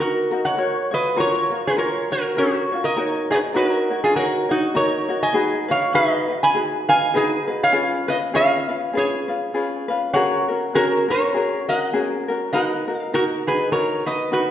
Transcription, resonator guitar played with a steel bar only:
0.00 F#4 A#4
0.45 C#5 F#5
0.94 B4 D#5
1.20 A#4 C#5
1.67 G#4 B4
1.78 A#4 C#5
2.12 F#4 A#4
2.38 C#4 F#4
2.84 A#4 D#5
3.31 G#4 B4
3.56 F#4 A#4
4.04 F4 G#4
4.16 F#4 A#4
4.51 D#4 F#4
4.76 A#4 C#5
5.23 D#5 G#5
5.71 C#5 F5
5.95 B4 E5
6.12 D#5
6.43 G#5 B5
6.89 F5 G#5
7.16 D#4 G#4
7.63 C#5 F5
8.08 B4 D#5
8.35 C#5 F5
8.97 G#4 C#5
10.13 C#5 F#5
10.75 F#4 A#4
11.10 A#4 C#5
11.69 D#5 F#5
12.53 D#5 F#5
12.96 F5
13.14 F#4 A#4
13.47 G#4 B4
13.72 A#4 C#5
14.06 B4 D#5
14.33 F#4 B4

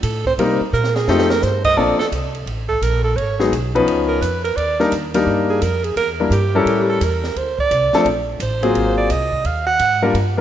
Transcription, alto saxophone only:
0.03 A4
0.26 C5
0.73 A#4
0.95 G#4
1.08 A4
1.30 A#4
1.43 C5
1.65 D#5
1.78 D5
1.99 A4
2.69 A4
2.83 A#4
3.04 A4
3.16 C#5
4.08 A#4
4.22 B4
4.44 A#4
4.56 D5
5.50 G#4
5.62 A#4
5.84 G#4
5.97 A#4
6.33 G4
6.89 A4
7.04 A#4
7.38 C5
7.60 D5
8.42 C5
8.98 D5
9.11 D#5
9.46 F5
9.67 F#5

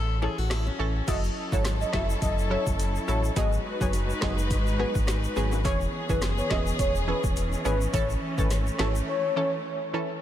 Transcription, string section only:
1.08 F#3 C#4 E4 A4
3.37 G#3 D#4 F#4 B4
5.65 E3 B3 C#4 G#4
7.94 A3

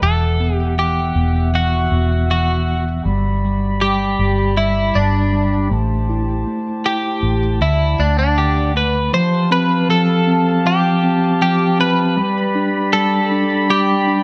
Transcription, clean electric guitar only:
0.03 A4
0.55 G4
0.79 G4
1.55 F#4
2.31 F#4
3.81 G4
4.57 E4
4.95 D4
6.86 G4
7.62 E4
8.00 D4
8.19 D4
8.38 G4
8.77 B4
9.14 C5
9.52 B4
9.90 A4
10.67 G4
11.42 G4
11.81 B4
12.93 A4
13.70 G4

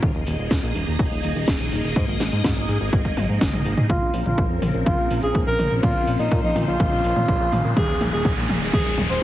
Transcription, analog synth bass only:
0.02 D#1
0.15 D#1
0.27 D#1
0.39 D#1
0.51 D#1
0.63 A#1
0.75 D#1
0.87 D#1
0.99 D#1
1.11 D#1
1.23 D#1
1.36 D#1
1.48 D#1
1.60 D#1
1.72 D#1
1.84 D#1
1.96 G#2
2.08 G#1
2.20 G#1
2.32 G#2
2.44 G#2
2.57 G#1
2.69 G#2
2.81 G#1
2.93 G#1
3.05 G#1
3.17 G#1
3.29 G#2
3.41 G#1
3.53 G#1
3.65 G#1
3.77 G#2
3.90 A#1
4.02 A#1
4.14 A#1
4.26 A#1
4.38 A#1
4.50 F2
4.62 A#1
4.74 A#1
4.86 A#1
4.99 A#1
5.11 A#1
5.23 A#1
5.35 A#1
5.47 A#1
5.59 A#1
5.71 A#1
5.83 A#2
5.95 A#1
6.07 A#1
6.19 A#2
6.32 A#2
6.44 A#1
6.56 A#2
6.68 A#1
6.80 A#1
6.92 A#1
7.04 A#1
7.16 A#2
7.28 A#1
7.40 A#1
7.52 A#1
7.65 A#2
7.77 D#1
7.89 D#1
8.01 D#1
8.13 D#1
8.25 D#1
8.37 A#1
8.49 D#1
8.61 D#1
8.73 D#1
8.85 D#1
8.98 D#1
9.10 D#1

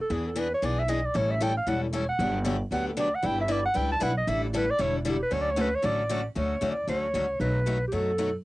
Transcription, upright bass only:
0.10 E2
0.62 B1
1.15 A1
1.67 E1
2.19 G1
2.71 D2
3.23 G1
3.76 C#2
4.01 B1
4.27 A1
4.79 E1
5.32 D2
5.84 A1
6.36 D2
6.62 E2
6.88 D2
7.14 C#2
7.40 B1
7.93 F#2

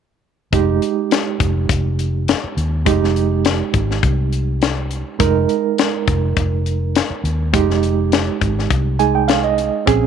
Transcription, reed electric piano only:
0.52 G#3 D#4 G4
2.86 G#3 D#4 G4
5.19 G#3 D#4 A#4
7.53 G#3 D#4 G4
8.99 G#3 D#4 G#4 G#5
9.15 G5
9.28 F5
9.44 D#5
9.86 C4 C#4 G#4

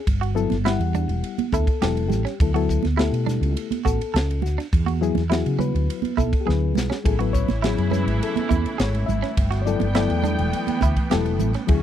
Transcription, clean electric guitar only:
0.21 F#4
0.65 E4
0.95 D4
1.54 E4
1.82 G4
2.25 C#4
2.54 F#4
2.97 E4
3.26 D4
3.85 F#4
4.14 A4
4.58 D4
4.86 F#4
5.30 E4
5.59 C#4
6.17 E4
6.47 G#4
6.90 C#4
7.19 F#4
7.62 E4
7.92 C#4
8.49 E4
8.78 G#4
9.22 C#4
9.51 F#4
9.95 E4
10.24 D4
10.83 E4
11.11 G4
11.55 C#4

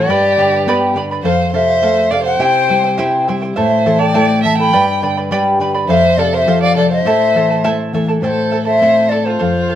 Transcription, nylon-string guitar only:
0.08 G2
0.37 D3
0.67 B3
0.95 D3
1.23 F2
1.53 C3
1.82 A3
2.11 C3
2.39 C3
2.70 G3
2.99 E4
3.29 G3
3.58 A2
3.86 E3
4.16 A3
4.44 E3
4.74 G2
5.03 D3
5.31 G3
5.60 D3
5.88 F2
6.17 C3
6.46 F3
6.75 C3
7.05 A2
7.35 E3
7.64 A3
7.93 E3
8.22 A2
8.81 A3 C4 E4
9.40 F2

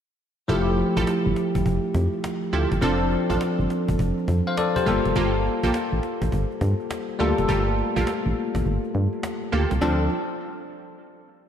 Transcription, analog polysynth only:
0.49 E4 F4 G4 A4
0.96 E4 F4 G4 A4
2.53 E4 F4 G4 A4
2.82 C4 D4 F4 A4
3.29 C4 D4 F4 A4
4.86 A#3 F4 G4 A4
5.16 A#3 F4 G4 A4
5.63 A#3 F4 G4 A4
7.19 A#3 F4 G4 A4
7.48 A#3 F4 G4 A4
7.96 A#3 F4 G4 A4
9.52 A#3 F4 G4 A4
9.81 C4 D4 F4 A4

